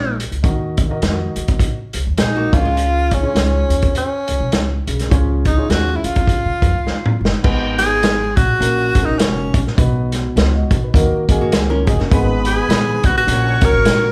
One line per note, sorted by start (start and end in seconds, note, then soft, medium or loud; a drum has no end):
0.00 0.22 A#1 medium
0.00 0.17 D#4 medium
0.20 closed hi-hat medium
0.32 0.41 C#2 medium
0.32 closed hi-hat soft
0.43 0.89 D#2 loud
0.43 1.33 D#3 medium
0.43 0.74 D#4 medium
0.43 0.74 F#4 medium
0.43 0.74 A#4 medium
0.43 0.75 D#5 medium
0.43 kick loud
0.43 closed hi-hat medium
0.77 kick medium
0.77 closed hi-hat medium
0.89 0.97 D#4 medium
0.89 0.97 F#4 medium
0.89 0.98 A#4 medium
0.89 0.98 D#5 medium
1.02 1.29 F2 medium
1.02 1.73 D#4 medium
1.02 1.10 F4 medium
1.02 1.74 A#4 medium
1.02 1.74 D#5 medium
1.02 snare loud
1.02 closed hi-hat medium
1.08 1.76 F#4 medium
1.36 1.68 D#2 medium
1.36 closed hi-hat medium
1.48 kick medium
1.48 closed hi-hat soft
1.59 kick medium
1.59 closed hi-hat medium
1.93 2.04 C#2 medium
1.93 closed hi-hat medium
2.07 2.16 D#2 medium
2.18 2.45 A#1 medium
2.18 2.56 D#4 medium
2.18 2.35 G#4 medium
2.18 snare loud
2.18 closed hi-hat medium
2.36 2.64 A#3 medium
2.36 2.64 F#4 medium
2.52 3.17 C#2 loud
2.52 3.32 C#3 medium
2.52 3.11 C#4 medium
2.52 3.12 F4 medium
2.52 3.15 F4 loud
2.52 3.12 G#4 medium
2.52 3.12 C#5 medium
2.52 kick loud
2.52 closed hi-hat medium
2.65 3.49 G#3 medium
2.65 3.49 F4 medium
2.77 closed hi-hat medium
3.11 3.95 C#4 medium
3.11 kick medium
3.11 closed hi-hat medium
3.22 3.30 C#4 medium
3.22 3.31 F4 medium
3.22 3.31 G#4 medium
3.22 3.31 C#5 medium
3.34 3.62 C#2 medium
3.34 4.06 C#4 medium
3.34 4.06 F4 medium
3.34 4.07 G#4 medium
3.34 4.07 C#5 medium
3.34 snare loud
3.34 closed hi-hat medium
3.70 4.02 D#2 medium
3.70 closed hi-hat medium
3.82 kick medium
3.82 closed hi-hat medium
3.95 4.85 C#4 medium
3.95 closed hi-hat medium
4.28 4.38 C#2 medium
4.28 closed hi-hat medium
4.40 4.50 B1 medium
4.52 4.79 C#2 medium
4.52 snare loud
4.52 closed hi-hat medium
4.87 5.06 B1 medium
4.87 5.66 C#3 medium
4.87 closed hi-hat medium
4.99 snare soft
4.99 closed hi-hat medium
5.10 5.56 C#2 loud
5.10 5.41 C#4 medium
5.10 5.41 F4 medium
5.10 5.42 G#4 medium
5.10 5.42 C#5 medium
5.10 kick loud
5.10 closed hi-hat medium
5.45 5.72 D#4 medium
5.45 kick medium
5.45 closed hi-hat medium
5.57 5.64 C#4 medium
5.57 5.65 F4 medium
5.57 5.65 G#4 medium
5.57 5.65 C#5 medium
5.69 5.96 D#2 medium
5.69 6.41 C#4 medium
5.69 6.41 F4 medium
5.69 5.98 F#4 medium
5.69 6.41 G#4 medium
5.69 6.42 C#5 medium
5.69 snare medium
5.69 closed hi-hat medium
5.96 6.07 E4 medium
6.04 6.23 C#2 medium
6.04 7.21 F4 medium
6.04 closed hi-hat medium
6.16 kick medium
6.16 closed hi-hat medium
6.28 kick medium
6.28 closed hi-hat medium
6.46 6.59 C#3 medium
6.62 6.72 F2 medium
6.62 kick medium
6.62 closed hi-hat medium
6.75 6.84 C#2 medium
6.87 7.13 D#2 medium
6.87 snare soft
7.06 mid tom medium
7.21 7.30 F#1 medium
7.25 snare medium
7.42 8.33 G#1 medium
7.42 8.33 G#2 medium
7.42 8.15 B3 medium
7.42 8.15 D#4 medium
7.42 8.15 G#4 medium
7.42 8.16 B4 medium
7.42 kick loud
7.42 crash medium
7.78 8.37 G#4 loud
7.78 snare soft
7.78 closed hi-hat medium
8.03 snare loud
8.03 closed hi-hat medium
8.36 8.56 A#1 medium
8.36 9.07 F#4 loud
8.36 kick medium
8.36 closed hi-hat medium
8.59 8.87 A#1 loud
8.59 9.50 A#2 medium
8.59 8.88 A#3 medium
8.59 8.88 C#4 medium
8.59 8.89 F#4 medium
8.59 8.89 A#4 medium
8.59 closed hi-hat medium
8.94 9.05 G#1 medium
8.94 9.46 A#3 medium
8.94 9.46 C#4 medium
8.94 9.46 F#4 medium
8.94 9.01 G#4 medium
8.94 kick medium
8.94 closed hi-hat medium
9.03 9.20 D#4 medium
9.03 9.50 A#4 medium
9.08 9.17 A#1 medium
9.18 9.47 F1 medium
9.18 9.65 C#4 medium
9.18 snare loud
9.18 closed hi-hat loud
9.54 9.73 A#1 medium
9.54 kick medium
9.54 closed hi-hat medium
9.67 snare soft
9.77 10.23 B1 loud
9.77 10.67 B2 medium
9.77 10.48 B3 medium
9.77 10.12 D#4 medium
9.77 10.12 F#4 medium
9.77 10.13 B4 medium
9.77 kick loud
9.77 closed hi-hat medium
10.12 snare soft
10.12 closed hi-hat medium
10.36 10.63 C#2 medium
10.36 10.53 F4 medium
10.36 10.53 C#5 medium
10.36 snare loud
10.36 closed hi-hat medium
10.54 10.82 F#4 medium
10.54 10.82 D#5 medium
10.71 10.89 B1 medium
10.71 kick medium
10.71 closed hi-hat medium
10.84 10.93 D#4 soft
10.84 11.11 B4 medium
10.94 11.07 D#2 medium
10.94 11.84 D#3 medium
10.94 11.22 A#3 medium
10.94 11.22 D#4 medium
10.94 11.23 F#4 medium
10.94 11.23 A#4 medium
10.94 kick medium
10.94 closed hi-hat medium
11.12 muted upright bass stroke soft
11.28 11.47 F#2 medium
11.28 11.80 A#3 medium
11.28 11.53 D#4 medium
11.28 11.54 F#4 medium
11.28 11.54 G#4 medium
11.28 kick medium
11.28 closed hi-hat medium
11.41 11.53 A#3 medium
11.41 11.53 F#4 medium
11.52 11.89 C#2 medium
11.52 11.69 G#4 medium
11.52 snare loud
11.52 closed hi-hat loud
11.70 11.87 C#4 medium
11.70 11.87 F4 medium
11.70 11.86 A#4 medium
11.70 11.87 C#5 medium
11.87 12.06 F#1 medium
11.87 11.99 F#4 medium
11.87 11.99 G#4 medium
11.87 11.99 D#5 medium
11.87 kick medium
11.87 closed hi-hat medium
12.00 12.27 A#3 medium
12.00 12.28 C#4 medium
12.00 12.27 F#4 medium
12.00 12.27 A#4 medium
12.00 snare soft
12.11 12.57 G#1 loud
12.11 13.00 G#2 medium
12.11 13.27 D#3 medium
12.11 12.82 B3 medium
12.11 13.27 B3 medium
12.11 12.82 D#4 medium
12.11 13.27 G#4 medium
12.11 12.83 G#4 medium
12.11 13.02 B4 medium
12.11 12.83 B4 loud
12.11 13.02 B5 loud
12.11 kick loud
12.11 closed hi-hat medium
12.45 13.07 G#4 medium
12.45 closed hi-hat medium
12.69 12.96 A#1 medium
12.69 snare loud
12.69 closed hi-hat medium
13.04 13.23 G#1 medium
13.04 13.17 F#4 medium
13.04 kick medium
13.04 closed hi-hat medium
13.18 13.66 F#4 medium
13.26 13.54 A#1 loud
13.26 14.12 A#2 medium
13.26 14.12 C#3 medium
13.26 13.55 A#3 medium
13.26 14.12 A#3 medium
13.26 13.55 C#4 medium
13.26 14.12 F#4 medium
13.26 13.55 F#4 medium
13.26 13.56 A#4 medium
13.26 14.12 C#5 medium
13.26 14.12 C#6 loud
13.26 closed hi-hat medium
13.60 13.71 C#2 medium
13.60 14.12 A#3 medium
13.60 14.12 C#4 medium
13.60 14.12 F#4 medium
13.60 14.12 A#4 medium
13.60 kick medium
13.60 closed hi-hat medium
13.65 14.12 A#4 loud
13.73 13.83 G#1 medium
13.85 14.12 A#1 medium
13.85 snare loud
13.85 closed hi-hat loud